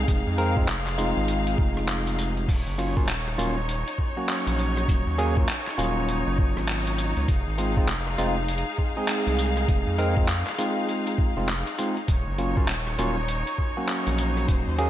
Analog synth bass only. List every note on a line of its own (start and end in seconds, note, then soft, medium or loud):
0.08 0.24 F1 loud
0.27 0.66 F2 loud
0.68 1.14 F1 loud
1.17 1.56 G#1 loud
1.58 2.46 F1 loud
2.48 2.64 D#1 medium
2.67 3.06 F#1 medium
3.08 3.36 D#1 loud
3.39 3.84 D#1 medium
4.47 4.86 A#1 loud
4.88 5.04 D#1 medium
5.07 5.46 D#2 loud
5.78 6.24 D#1 medium
6.27 6.54 F#1 loud
6.57 7.14 G#1 medium
7.17 7.26 C#2 loud
7.28 7.44 F1 loud
7.47 7.87 G#1 loud
7.88 8.16 F1 loud
8.18 8.64 F1 medium
9.27 9.66 C2 loud
9.68 9.84 F1 loud
9.87 10.26 F2 loud
10.28 10.44 F2 loud
11.37 11.64 F1 loud
12.08 12.24 D#1 loud
12.27 12.66 F#1 loud
12.68 12.96 D#1 loud
12.98 13.44 D#1 medium
14.07 14.46 A#1 loud
14.48 14.64 D#1 loud
14.67 14.90 D#2 medium